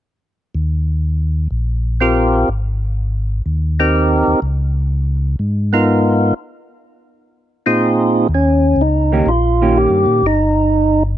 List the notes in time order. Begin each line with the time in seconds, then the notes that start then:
0.55 D#2
1.51 A#1
2.00 C4 F4 G4 A#4
2.48 G#1
3.46 D#2
3.79 C4 D#4 G4 A#4
4.27 D#2
4.42 C#2
5.39 G#2
5.73 B3 D#4 F4 A#4
7.66 A#2 C4 D#4 F4 G#4
8.28 D#2
8.34 C#4
8.76 C#2
8.81 D#4
9.12 D#3 A#3 C#4 G4
9.26 A#1 F4
9.61 D#3 A#3 C#4 G4
9.77 G4
9.90 G2
10.06 A#2
10.23 G1 D#4